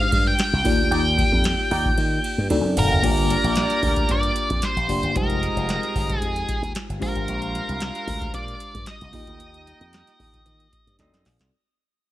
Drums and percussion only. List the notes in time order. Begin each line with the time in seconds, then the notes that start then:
0.12 kick, ride
0.39 snare, ride
0.54 snare
0.65 kick, open hi-hat, ride
0.92 ride
1.18 kick, snare, ride
1.32 kick
1.44 snare, ride
1.59 snare
1.71 open hi-hat, ride
1.85 kick
1.98 ride
2.24 ride
2.50 high tom, ride
2.77 mid tom, open hi-hat, ride
2.91 floor tom
3.03 kick, closed hi-hat, crash
3.17 closed hi-hat
3.30 snare, closed hi-hat
3.44 closed hi-hat
3.56 snare, closed hi-hat
3.70 snare, closed hi-hat
3.82 kick, open hi-hat
3.96 kick, closed hi-hat
4.09 kick, closed hi-hat
4.23 closed hi-hat
4.36 closed hi-hat
4.50 kick, closed hi-hat
4.62 snare, closed hi-hat
4.77 closed hi-hat
4.89 open hi-hat
5.03 closed hi-hat
5.15 kick, closed hi-hat
5.30 closed hi-hat
5.43 snare, closed hi-hat
5.57 closed hi-hat
5.69 snare, closed hi-hat
5.83 snare, closed hi-hat
5.95 kick, open hi-hat
6.09 kick, closed hi-hat
6.22 closed hi-hat
6.36 closed hi-hat
6.48 kick, closed hi-hat
6.63 closed hi-hat
6.75 snare, closed hi-hat
6.90 closed hi-hat
7.01 kick, open hi-hat
7.15 closed hi-hat
7.28 closed hi-hat
7.42 closed hi-hat
7.55 snare, closed hi-hat
7.69 closed hi-hat
7.80 snare, closed hi-hat
7.95 snare, closed hi-hat
8.07 kick, open hi-hat
8.21 kick, closed hi-hat
8.34 kick, closed hi-hat
8.48 closed hi-hat
8.60 closed hi-hat
8.75 kick, closed hi-hat
8.86 snare, closed hi-hat
9.01 closed hi-hat
9.13 kick, open hi-hat
9.27 closed hi-hat
9.40 closed hi-hat
9.54 closed hi-hat
9.67 snare, closed hi-hat
9.81 closed hi-hat
9.93 snare, closed hi-hat
10.07 snare, closed hi-hat
10.19 kick, open hi-hat
10.34 kick, closed hi-hat
10.46 kick, closed hi-hat
10.60 closed hi-hat
10.73 kick, closed hi-hat
10.87 closed hi-hat
10.99 snare, closed hi-hat
11.14 snare, closed hi-hat
11.25 snare, open hi-hat
11.39 snare, closed hi-hat